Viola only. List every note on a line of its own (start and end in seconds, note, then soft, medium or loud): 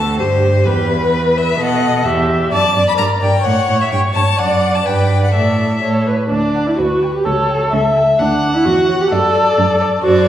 0.00 0.21 A4 soft
0.19 0.68 G4 soft
0.66 1.58 B4 soft
1.59 2.07 D#5 medium
2.06 2.51 E5 medium
2.52 2.97 D5 medium
2.98 3.43 A#4 medium
3.44 4.40 C#5 medium
4.38 4.86 D5 medium
4.86 5.34 B4 soft
5.34 5.77 A4 soft
5.83 6.09 A4 soft
6.07 6.30 B4 soft
6.30 6.68 D4 soft
6.67 6.77 E4 soft
6.78 7.13 F#4 soft
7.14 7.27 G4 medium
7.25 7.96 A4 medium
8.19 8.56 D4 medium
8.54 8.67 E4 medium
8.65 9.00 F#4 medium
9.01 9.05 G4 medium
9.12 9.80 A4 medium
10.03 10.28 F#4 medium